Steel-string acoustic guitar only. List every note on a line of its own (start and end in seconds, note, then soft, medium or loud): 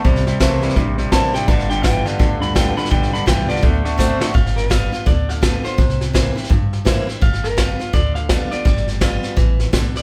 0.05 0.73 C3 medium
0.40 0.75 E3 medium
0.40 0.75 A#3 medium
0.40 0.75 C4 medium
0.40 0.75 E4 medium
0.77 1.45 G2 medium
1.12 1.33 E3 medium
1.12 1.33 A#3 medium
1.12 1.33 C4 medium
1.12 1.32 E4 medium
1.34 1.48 C4 soft
1.34 1.47 E4 medium
1.48 1.82 G3 loud
1.83 2.04 G3 medium
1.83 2.05 B3 medium
1.83 2.04 F4 medium
2.06 2.20 B3 medium
2.06 2.19 F4 medium
2.19 2.88 D3 loud
2.55 2.76 G3 medium
2.55 2.77 B3 medium
2.55 2.76 F4 medium
2.77 2.91 B3 soft
2.77 2.90 F4 medium
2.91 3.25 G3 medium
3.26 3.48 G3 medium
3.26 3.48 B3 medium
3.26 3.47 F4 medium
3.48 3.63 B3 medium
3.48 3.62 F4 medium
3.62 3.96 D3 loud
3.98 4.19 D3 medium
3.98 4.20 A3 medium
3.98 4.20 C4 medium
3.98 4.19 F#4 medium
4.20 4.35 C4 medium
4.20 4.34 F#4 medium
4.34 4.69 G3 medium
4.70 4.91 G3 medium
4.70 4.92 B3 medium
4.70 4.91 F4 medium
4.92 5.07 B3 soft
4.92 5.06 F4 medium
5.06 5.75 D3 medium
5.42 5.63 G3 medium
5.42 5.64 B3 medium
5.42 5.63 F4 medium
5.64 5.78 B3 soft
5.64 5.77 F4 medium
5.78 6.47 C3 loud
6.13 6.35 E3 medium
6.13 6.35 A#3 medium
6.13 6.36 C4 medium
6.13 6.34 E4 medium
6.35 6.50 C4 soft
6.35 6.49 E4 medium
6.50 7.19 G2 medium
6.85 7.07 E3 medium
6.85 7.07 A#3 medium
6.85 7.07 C4 medium
6.85 7.06 E4 medium
7.07 7.22 C4 soft
7.07 7.21 E4 medium
7.21 7.56 G3 medium
7.57 7.78 G3 medium
7.57 7.79 B3 medium
7.57 7.78 F4 loud
7.79 7.94 B3 soft
7.79 7.93 F4 medium
7.93 8.62 D3 loud
8.29 8.51 G3 medium
8.29 8.51 B3 medium
8.29 8.50 F4 loud
8.51 8.65 B3 soft
8.51 8.65 F4 medium
8.65 8.99 G3 loud
9.01 9.36 G3 medium
9.01 9.36 B3 medium
9.01 9.36 F4 loud
9.36 9.71 E3 medium
9.73 10.02 D3 medium